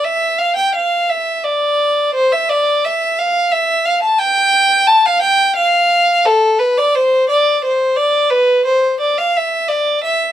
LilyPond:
\new Staff \with { instrumentName = "Violin" } { \time 6/8 \key d \minor \tempo 4. = 58 e''8 f''16 g''16 f''8 e''8 d''4 | c''16 e''16 d''8 e''8 f''8 e''8 f''16 a''16 | g''4 a''16 f''16 g''8 f''4 | \key d \dorian a'8 b'16 d''16 c''8 d''8 c''8 d''8 |
b'8 c''8 d''16 f''16 e''8 d''8 e''8 | }